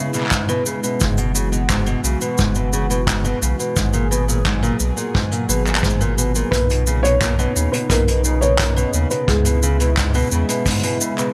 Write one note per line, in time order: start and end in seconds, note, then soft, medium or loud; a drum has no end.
0.00 0.13 C#3 medium
0.00 0.98 C#3 medium
0.00 3.72 G#3 medium
0.00 0.98 E4 medium
0.14 0.24 B2 medium
0.14 clap soft
0.14 cabasa soft
0.17 clap soft
0.20 clap soft
0.23 clap soft
0.26 clap soft
0.29 clap soft
0.31 0.48 G#2 medium
0.31 kick loud
0.31 clap loud
0.31 cabasa medium
0.49 0.64 B2 loud
0.49 cabasa soft
0.66 0.81 C#3 medium
0.66 cabasa medium
0.83 0.99 B2 medium
0.83 cabasa soft
1.00 1.96 F#1 medium
1.00 1.16 G#2 medium
1.00 3.74 E3 medium
1.00 3.74 F#4 medium
1.00 kick loud
1.00 cabasa medium
1.18 1.33 B2 medium
1.18 cabasa soft
1.35 1.50 C#3 medium
1.35 cabasa medium
1.52 1.62 B2 medium
1.52 cabasa soft
1.69 1.86 G#2 medium
1.69 kick loud
1.69 clap medium
1.69 cabasa medium
1.86 2.02 B2 loud
1.86 cabasa soft
2.04 2.16 B1 medium
2.04 2.19 C#3 medium
2.04 cabasa medium
2.21 2.37 B2 medium
2.21 cabasa soft
2.38 3.34 F#1 medium
2.38 2.54 G#2 medium
2.38 kick medium
2.38 cabasa medium
2.55 2.71 B2 medium
2.55 cabasa soft
2.73 2.88 C#3 medium
2.73 cabasa medium
2.90 3.00 B2 medium
2.90 cabasa soft
3.07 3.24 G#2 medium
3.07 kick loud
3.07 clap loud
3.07 cabasa medium
3.25 3.40 B2 medium
3.25 cabasa soft
3.42 3.54 B1 medium
3.42 3.57 C#3 medium
3.42 cabasa medium
3.59 3.75 B2 medium
3.59 cabasa soft
3.76 4.72 G#1 medium
3.76 3.92 G#2 medium
3.76 9.24 A#2 medium
3.76 6.49 F#3 medium
3.76 6.49 G#4 medium
3.76 kick medium
3.76 cabasa medium
3.93 4.09 A#2 medium
3.93 cabasa soft
4.11 4.26 B2 medium
4.11 cabasa medium
4.28 4.38 A#2 medium
4.28 cabasa soft
4.45 4.62 G#2 medium
4.45 kick medium
4.45 clap medium
4.45 cabasa soft
4.63 4.78 A#2 loud
4.63 cabasa soft
4.80 4.92 B1 medium
4.80 4.95 B2 medium
4.80 cabasa medium
4.97 5.12 A#2 medium
4.97 cabasa soft
5.14 5.30 G#2 medium
5.14 kick loud
5.32 5.47 A#2 medium
5.32 cabasa soft
5.49 6.44 G#1 medium
5.49 5.64 B2 medium
5.49 cabasa medium
5.66 5.76 A#2 medium
5.66 clap soft
5.66 cabasa soft
5.75 clap medium
5.75 cabasa soft
5.83 6.00 G#2 medium
5.83 kick loud
5.83 cabasa medium
5.90 cabasa soft
6.01 6.16 A#2 medium
6.01 cabasa soft
6.18 6.33 B2 medium
6.18 cabasa medium
6.35 6.51 A#2 medium
6.35 cabasa soft
6.51 7.47 B1 medium
6.51 6.68 A#2 medium
6.51 11.33 C#3 medium
6.51 9.25 D#4 medium
6.51 7.05 B4 loud
6.51 kick loud
6.51 closed hi-hat medium
6.51 cabasa medium
6.70 6.85 B2 medium
6.70 closed hi-hat soft
6.70 cabasa soft
6.87 7.02 C#3 medium
6.87 cabasa medium
7.03 7.14 B2 medium
7.03 7.74 C#5 loud
7.03 closed hi-hat soft
7.03 cabasa soft
7.21 7.38 A#2 medium
7.21 kick loud
7.21 clap medium
7.21 closed hi-hat medium
7.21 cabasa medium
7.39 7.54 B2 loud
7.39 cabasa soft
7.56 7.68 D#2 medium
7.56 7.71 C#3 medium
7.56 cabasa medium
7.72 7.89 B2 medium
7.72 7.90 B4 medium
7.72 closed hi-hat medium
7.72 cabasa soft
7.89 8.85 B1 medium
7.89 8.06 A#2 medium
7.89 8.43 A#4 medium
7.89 kick medium
7.89 closed hi-hat medium
7.89 cabasa medium
8.08 8.23 B2 medium
8.08 closed hi-hat soft
8.08 cabasa soft
8.24 8.40 C#3 medium
8.24 cabasa medium
8.41 8.52 B2 medium
8.41 9.12 C#5 medium
8.41 cabasa soft
8.58 8.76 A#2 medium
8.58 kick loud
8.58 clap medium
8.58 closed hi-hat medium
8.58 cabasa medium
8.76 8.92 B2 medium
8.76 cabasa soft
8.94 9.06 D#2 medium
8.94 9.09 C#3 medium
8.94 cabasa medium
9.10 9.26 B2 medium
9.10 9.27 B4 medium
9.10 closed hi-hat soft
9.10 cabasa medium
9.27 10.23 C#2 medium
9.27 9.44 G#2 medium
9.27 11.33 G#3 medium
9.27 11.33 E4 medium
9.27 10.27 G#4 medium
9.27 kick medium
9.27 closed hi-hat medium
9.45 9.61 B2 medium
9.45 closed hi-hat soft
9.45 cabasa medium
9.45 cabasa soft
9.63 9.78 C#3 medium
9.63 cabasa medium
9.80 9.90 B2 medium
9.80 closed hi-hat soft
9.80 cabasa soft
9.97 10.14 G#2 medium
9.97 kick loud
9.97 clap medium
9.97 closed hi-hat medium
9.97 cabasa medium
10.14 10.30 B2 loud
10.14 cabasa soft
10.17 cabasa soft
10.19 cabasa soft
10.22 cabasa soft
10.24 cabasa soft
10.27 cabasa soft
10.29 cabasa soft
10.32 10.44 E2 medium
10.32 10.47 C#3 medium
10.32 cabasa medium
10.48 10.65 B2 medium
10.48 closed hi-hat soft
10.48 cabasa soft
10.66 10.82 G#2 medium
10.66 kick medium
10.66 closed hi-hat medium
10.66 cabasa medium
10.70 closed hi-hat medium
10.75 closed hi-hat soft
10.79 closed hi-hat soft
10.83 10.99 B2 medium
10.83 closed hi-hat medium
10.83 cabasa soft
10.88 closed hi-hat soft
10.92 closed hi-hat soft
10.96 closed hi-hat soft
11.01 11.16 C#3 medium
11.01 cabasa medium
11.18 11.28 B2 medium
11.18 clap soft
11.18 cabasa soft